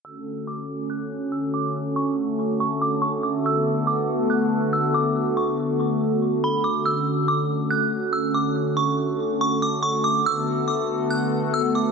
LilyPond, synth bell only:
\new Staff \with { instrumentName = "Synth bell" } { \time 4/4 \key d \major \tempo 4 = 141 e'''4 d'''4 fis'''4 e'''8 d'''8 | r8 cis'''8 r4 cis'''8 d'''8 cis'''8 d'''8 | e'''4 d'''4 fis'''4 e'''8 d'''8 | r8 cis'''8 r2 b''8 d'''8 |
e'''4 d'''4 fis'''4 e'''8 d'''8 | r8 cis'''8 r4 cis'''8 d'''8 cis'''8 d'''8 | e'''4 d'''4 fis'''4 e'''8 d'''8 | }